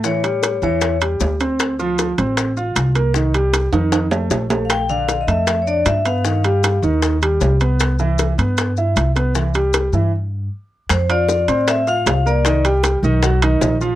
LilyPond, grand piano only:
\new Staff \with { instrumentName = "Grand piano" } { \time 4/4 \key c \major \tempo 4 = 155 <e e'>8 <g g'>4 <e e'>4 <g g'>4 <c' c''>8~ | <c' c''>8 <f f'>4 <c' c''>4 <f' f''>4 <bes bes'>8 | <ees ees'>8 <g g'>4 <ees ees'>4 <a a'>4 <a a'>8~ | <a a'>8 <d d'>4 <a a'>4 <d' d''>4 <b b'>8 |
<dis dis'>8 <g g'>4 <dis dis'>4 <g g'>4 <b b'>8~ | <b b'>8 <e e'>4 <b b'>4 <e' e''>4 <b b'>8 | <e e'>8 <g g'>4 <e e'>8 r2 | \key c \mixolydian r8 <f' f'' f'''>4 <c' c'' c'''>4 <f' f'' f'''>4 <bes bes' bes''>8 |
<ees ees' ees''>8 <g g' g''>4 <ees ees' ees''>8 <fis fis' fis''>8 <dis dis' dis''>4 <f f' f''>8 | }